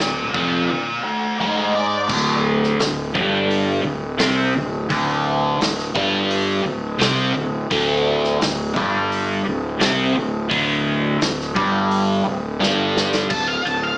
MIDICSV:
0, 0, Header, 1, 5, 480
1, 0, Start_track
1, 0, Tempo, 701754
1, 1437, Time_signature, 4, 2, 24, 8
1, 9560, End_track
2, 0, Start_track
2, 0, Title_t, "Lead electric guitar"
2, 0, Program_c, 0, 29
2, 0, Note_on_c, 0, 74, 72
2, 0, Note_on_c, 0, 77, 70
2, 221, Note_off_c, 0, 74, 0
2, 229, Note_off_c, 0, 77, 0
2, 242, Note_on_c, 0, 74, 67
2, 246, Note_on_c, 0, 77, 70
2, 460, Note_off_c, 0, 74, 0
2, 468, Note_on_c, 0, 74, 61
2, 472, Note_off_c, 0, 77, 0
2, 481, Note_on_c, 0, 77, 74
2, 696, Note_off_c, 0, 74, 0
2, 710, Note_on_c, 0, 66, 72
2, 712, Note_off_c, 0, 77, 0
2, 712, Note_on_c, 0, 74, 76
2, 937, Note_off_c, 0, 66, 0
2, 946, Note_off_c, 0, 74, 0
2, 956, Note_on_c, 0, 66, 65
2, 962, Note_on_c, 0, 74, 74
2, 1180, Note_off_c, 0, 66, 0
2, 1189, Note_off_c, 0, 74, 0
2, 1198, Note_on_c, 0, 74, 86
2, 1430, Note_off_c, 0, 74, 0
2, 9097, Note_on_c, 0, 81, 83
2, 9218, Note_on_c, 0, 77, 73
2, 9222, Note_off_c, 0, 81, 0
2, 9339, Note_on_c, 0, 81, 77
2, 9343, Note_off_c, 0, 77, 0
2, 9462, Note_on_c, 0, 77, 70
2, 9464, Note_off_c, 0, 81, 0
2, 9560, Note_off_c, 0, 77, 0
2, 9560, End_track
3, 0, Start_track
3, 0, Title_t, "Overdriven electric guitar"
3, 0, Program_c, 1, 29
3, 0, Note_on_c, 1, 38, 64
3, 192, Note_off_c, 1, 38, 0
3, 240, Note_on_c, 1, 41, 80
3, 249, Note_on_c, 1, 53, 83
3, 472, Note_off_c, 1, 41, 0
3, 477, Note_off_c, 1, 53, 0
3, 489, Note_on_c, 1, 38, 66
3, 676, Note_off_c, 1, 38, 0
3, 959, Note_on_c, 1, 44, 86
3, 964, Note_on_c, 1, 56, 87
3, 1425, Note_off_c, 1, 44, 0
3, 1428, Note_on_c, 1, 38, 92
3, 1433, Note_off_c, 1, 56, 0
3, 1436, Note_on_c, 1, 50, 96
3, 1904, Note_off_c, 1, 38, 0
3, 1908, Note_off_c, 1, 50, 0
3, 1918, Note_on_c, 1, 38, 71
3, 2109, Note_off_c, 1, 38, 0
3, 2149, Note_on_c, 1, 43, 95
3, 2155, Note_on_c, 1, 55, 87
3, 2621, Note_off_c, 1, 43, 0
3, 2624, Note_on_c, 1, 38, 66
3, 2626, Note_off_c, 1, 55, 0
3, 2821, Note_off_c, 1, 38, 0
3, 2861, Note_on_c, 1, 48, 92
3, 2866, Note_on_c, 1, 60, 101
3, 3099, Note_off_c, 1, 48, 0
3, 3101, Note_off_c, 1, 60, 0
3, 3119, Note_on_c, 1, 38, 73
3, 3307, Note_off_c, 1, 38, 0
3, 3345, Note_on_c, 1, 38, 89
3, 3354, Note_on_c, 1, 50, 112
3, 3820, Note_off_c, 1, 38, 0
3, 3824, Note_off_c, 1, 50, 0
3, 3835, Note_on_c, 1, 38, 71
3, 4024, Note_off_c, 1, 38, 0
3, 4066, Note_on_c, 1, 43, 92
3, 4071, Note_on_c, 1, 55, 105
3, 4540, Note_off_c, 1, 43, 0
3, 4542, Note_off_c, 1, 55, 0
3, 4543, Note_on_c, 1, 38, 64
3, 4737, Note_off_c, 1, 38, 0
3, 4779, Note_on_c, 1, 48, 101
3, 4785, Note_on_c, 1, 60, 101
3, 5016, Note_off_c, 1, 48, 0
3, 5019, Note_off_c, 1, 60, 0
3, 5025, Note_on_c, 1, 38, 70
3, 5218, Note_off_c, 1, 38, 0
3, 5271, Note_on_c, 1, 38, 105
3, 5278, Note_on_c, 1, 50, 109
3, 5741, Note_off_c, 1, 38, 0
3, 5745, Note_off_c, 1, 50, 0
3, 5754, Note_on_c, 1, 38, 75
3, 5942, Note_off_c, 1, 38, 0
3, 5999, Note_on_c, 1, 43, 91
3, 5999, Note_on_c, 1, 55, 111
3, 6465, Note_off_c, 1, 43, 0
3, 6465, Note_off_c, 1, 55, 0
3, 6473, Note_on_c, 1, 38, 63
3, 6662, Note_off_c, 1, 38, 0
3, 6698, Note_on_c, 1, 48, 91
3, 6711, Note_on_c, 1, 60, 101
3, 6935, Note_off_c, 1, 48, 0
3, 6939, Note_on_c, 1, 38, 73
3, 6942, Note_off_c, 1, 60, 0
3, 7135, Note_off_c, 1, 38, 0
3, 7177, Note_on_c, 1, 38, 89
3, 7183, Note_on_c, 1, 50, 95
3, 7656, Note_off_c, 1, 38, 0
3, 7659, Note_off_c, 1, 50, 0
3, 7664, Note_on_c, 1, 38, 70
3, 7859, Note_off_c, 1, 38, 0
3, 7898, Note_on_c, 1, 43, 88
3, 7906, Note_on_c, 1, 55, 96
3, 8378, Note_off_c, 1, 43, 0
3, 8382, Note_off_c, 1, 55, 0
3, 8385, Note_on_c, 1, 38, 64
3, 8581, Note_off_c, 1, 38, 0
3, 8618, Note_on_c, 1, 43, 95
3, 8622, Note_on_c, 1, 55, 99
3, 9100, Note_off_c, 1, 43, 0
3, 9102, Note_off_c, 1, 55, 0
3, 9560, End_track
4, 0, Start_track
4, 0, Title_t, "Fingered electric bass"
4, 0, Program_c, 2, 33
4, 4, Note_on_c, 2, 26, 73
4, 225, Note_off_c, 2, 26, 0
4, 231, Note_on_c, 2, 29, 87
4, 458, Note_off_c, 2, 29, 0
4, 1432, Note_on_c, 2, 26, 96
4, 1886, Note_off_c, 2, 26, 0
4, 1917, Note_on_c, 2, 26, 77
4, 2139, Note_off_c, 2, 26, 0
4, 2159, Note_on_c, 2, 31, 87
4, 2608, Note_off_c, 2, 31, 0
4, 2630, Note_on_c, 2, 26, 72
4, 2855, Note_off_c, 2, 26, 0
4, 2871, Note_on_c, 2, 36, 97
4, 3095, Note_off_c, 2, 36, 0
4, 3121, Note_on_c, 2, 26, 74
4, 3340, Note_off_c, 2, 26, 0
4, 3356, Note_on_c, 2, 26, 88
4, 3805, Note_off_c, 2, 26, 0
4, 3832, Note_on_c, 2, 26, 78
4, 4054, Note_off_c, 2, 26, 0
4, 4072, Note_on_c, 2, 31, 92
4, 4522, Note_off_c, 2, 31, 0
4, 4547, Note_on_c, 2, 26, 74
4, 4771, Note_off_c, 2, 26, 0
4, 4793, Note_on_c, 2, 36, 101
4, 5013, Note_off_c, 2, 36, 0
4, 5037, Note_on_c, 2, 26, 74
4, 5256, Note_off_c, 2, 26, 0
4, 5276, Note_on_c, 2, 26, 89
4, 5724, Note_off_c, 2, 26, 0
4, 5763, Note_on_c, 2, 26, 72
4, 5978, Note_off_c, 2, 26, 0
4, 5995, Note_on_c, 2, 31, 93
4, 6443, Note_off_c, 2, 31, 0
4, 6482, Note_on_c, 2, 26, 75
4, 6698, Note_off_c, 2, 26, 0
4, 6710, Note_on_c, 2, 36, 99
4, 6932, Note_off_c, 2, 36, 0
4, 6962, Note_on_c, 2, 26, 68
4, 7178, Note_off_c, 2, 26, 0
4, 7190, Note_on_c, 2, 26, 90
4, 7642, Note_off_c, 2, 26, 0
4, 7671, Note_on_c, 2, 26, 78
4, 7894, Note_off_c, 2, 26, 0
4, 7910, Note_on_c, 2, 31, 93
4, 8363, Note_off_c, 2, 31, 0
4, 8390, Note_on_c, 2, 26, 71
4, 8614, Note_off_c, 2, 26, 0
4, 8642, Note_on_c, 2, 31, 96
4, 9092, Note_off_c, 2, 31, 0
4, 9105, Note_on_c, 2, 26, 90
4, 9273, Note_off_c, 2, 26, 0
4, 9347, Note_on_c, 2, 26, 80
4, 9515, Note_off_c, 2, 26, 0
4, 9560, End_track
5, 0, Start_track
5, 0, Title_t, "Drums"
5, 1, Note_on_c, 9, 38, 95
5, 69, Note_off_c, 9, 38, 0
5, 235, Note_on_c, 9, 36, 105
5, 304, Note_off_c, 9, 36, 0
5, 1431, Note_on_c, 9, 49, 108
5, 1435, Note_on_c, 9, 36, 93
5, 1499, Note_off_c, 9, 49, 0
5, 1503, Note_off_c, 9, 36, 0
5, 1802, Note_on_c, 9, 38, 31
5, 1870, Note_off_c, 9, 38, 0
5, 1912, Note_on_c, 9, 46, 53
5, 1918, Note_on_c, 9, 38, 105
5, 1980, Note_off_c, 9, 46, 0
5, 1987, Note_off_c, 9, 38, 0
5, 2156, Note_on_c, 9, 36, 109
5, 2224, Note_off_c, 9, 36, 0
5, 2397, Note_on_c, 9, 46, 51
5, 2466, Note_off_c, 9, 46, 0
5, 2866, Note_on_c, 9, 46, 59
5, 2872, Note_on_c, 9, 38, 106
5, 2934, Note_off_c, 9, 46, 0
5, 2940, Note_off_c, 9, 38, 0
5, 3353, Note_on_c, 9, 36, 106
5, 3354, Note_on_c, 9, 46, 52
5, 3422, Note_off_c, 9, 36, 0
5, 3422, Note_off_c, 9, 46, 0
5, 3838, Note_on_c, 9, 46, 54
5, 3844, Note_on_c, 9, 38, 100
5, 3907, Note_off_c, 9, 46, 0
5, 3913, Note_off_c, 9, 38, 0
5, 3960, Note_on_c, 9, 38, 30
5, 4028, Note_off_c, 9, 38, 0
5, 4073, Note_on_c, 9, 36, 108
5, 4141, Note_off_c, 9, 36, 0
5, 4312, Note_on_c, 9, 46, 53
5, 4381, Note_off_c, 9, 46, 0
5, 4792, Note_on_c, 9, 46, 50
5, 4798, Note_on_c, 9, 38, 106
5, 4860, Note_off_c, 9, 46, 0
5, 4866, Note_off_c, 9, 38, 0
5, 5273, Note_on_c, 9, 36, 101
5, 5276, Note_on_c, 9, 46, 54
5, 5342, Note_off_c, 9, 36, 0
5, 5344, Note_off_c, 9, 46, 0
5, 5637, Note_on_c, 9, 38, 28
5, 5705, Note_off_c, 9, 38, 0
5, 5755, Note_on_c, 9, 46, 53
5, 5761, Note_on_c, 9, 38, 101
5, 5823, Note_off_c, 9, 46, 0
5, 5829, Note_off_c, 9, 38, 0
5, 5993, Note_on_c, 9, 36, 106
5, 6062, Note_off_c, 9, 36, 0
5, 6237, Note_on_c, 9, 46, 48
5, 6305, Note_off_c, 9, 46, 0
5, 6706, Note_on_c, 9, 46, 54
5, 6712, Note_on_c, 9, 38, 110
5, 6774, Note_off_c, 9, 46, 0
5, 6781, Note_off_c, 9, 38, 0
5, 7191, Note_on_c, 9, 36, 94
5, 7196, Note_on_c, 9, 46, 52
5, 7259, Note_off_c, 9, 36, 0
5, 7265, Note_off_c, 9, 46, 0
5, 7669, Note_on_c, 9, 46, 54
5, 7675, Note_on_c, 9, 38, 106
5, 7737, Note_off_c, 9, 46, 0
5, 7743, Note_off_c, 9, 38, 0
5, 7803, Note_on_c, 9, 38, 30
5, 7871, Note_off_c, 9, 38, 0
5, 7909, Note_on_c, 9, 36, 107
5, 7977, Note_off_c, 9, 36, 0
5, 8147, Note_on_c, 9, 46, 54
5, 8215, Note_off_c, 9, 46, 0
5, 8639, Note_on_c, 9, 38, 60
5, 8707, Note_off_c, 9, 38, 0
5, 8871, Note_on_c, 9, 38, 82
5, 8939, Note_off_c, 9, 38, 0
5, 8987, Note_on_c, 9, 38, 83
5, 9055, Note_off_c, 9, 38, 0
5, 9097, Note_on_c, 9, 49, 104
5, 9102, Note_on_c, 9, 36, 100
5, 9165, Note_off_c, 9, 49, 0
5, 9170, Note_off_c, 9, 36, 0
5, 9347, Note_on_c, 9, 51, 64
5, 9416, Note_off_c, 9, 51, 0
5, 9560, End_track
0, 0, End_of_file